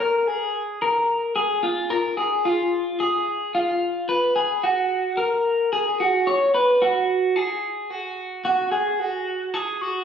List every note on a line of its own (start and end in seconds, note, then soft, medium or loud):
0.00 0.27 A#4 medium
0.27 0.79 G#4 medium
0.82 1.33 A#4 medium
1.36 1.64 G#4 medium
1.63 1.91 F4 medium
1.90 2.17 A#4 medium
2.17 2.45 G#4 medium
2.45 2.97 F4 medium
3.00 3.51 G#4 medium
3.55 4.06 F4 medium
4.09 4.35 B4 medium
4.36 4.63 G#4 medium
4.63 5.15 F#4 medium
5.17 5.69 A#4 medium
5.73 6.00 G#4 medium
6.00 6.27 F#4 medium
6.27 6.54 C#5 medium
6.54 6.82 B4 medium
6.82 7.36 F#4 medium
7.36 7.90 G#4 medium
7.90 8.42 F#4 medium
8.45 8.71 F#4 medium
8.72 9.00 G#4 medium
9.00 9.54 F#4 medium
9.54 9.81 G#4 medium
9.81 10.04 F#4 medium